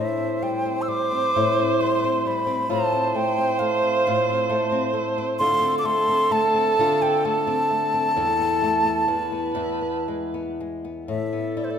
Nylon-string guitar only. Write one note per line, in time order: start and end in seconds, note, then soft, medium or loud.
0.00 1.34 A2 medium
0.00 1.35 E4 soft
0.17 0.65 C4 soft
0.42 0.87 G3 soft
0.66 1.11 C4 soft
0.88 1.80 G3 medium
1.12 1.58 C4 soft
1.36 2.68 A2 medium
1.36 2.70 E4 medium
1.59 2.04 C4 soft
1.81 2.24 G3 medium
2.04 2.46 C4 medium
2.25 2.79 G3 medium
2.47 2.93 C4 medium
2.69 4.05 A2 medium
2.69 4.07 F4 medium
2.93 3.38 C4 medium
3.15 3.60 A3 medium
3.38 3.82 C4 medium
3.60 4.49 A3 medium
3.83 4.29 C4 medium
4.07 5.49 A2 medium
4.07 5.41 F4 medium
4.29 4.72 C4 medium
4.50 4.93 A3 medium
4.72 5.18 C4 medium
4.94 5.84 A3 medium
5.18 5.61 C4 medium
5.40 6.78 D3 medium
5.40 6.78 F4 medium
5.61 6.07 C4 medium
5.84 6.31 A3 medium
6.08 6.53 C4 medium
6.31 7.23 A3 medium
6.54 7.01 C4 medium
6.79 8.25 D3 medium
6.79 8.16 F4 medium
7.02 7.46 C4 medium
7.25 7.69 A3 medium
7.47 7.92 C4 medium
7.71 8.25 A3 medium
7.94 8.25 C4 medium
8.16 9.07 E2 medium
8.16 9.56 E4 medium
8.40 8.84 B3 soft
8.62 9.18 A3 medium
8.84 9.32 B3 medium
9.08 9.54 E2 medium
9.32 9.81 B3 soft
9.55 11.18 E2 medium
9.55 11.56 E4 medium
9.81 10.34 B3 soft
10.08 10.59 G#3 soft
10.34 10.84 B3 soft
10.60 11.19 G#3 soft
10.85 11.32 B3 soft
11.08 11.79 A2 medium
11.33 11.79 B3 soft
11.57 11.79 E4 medium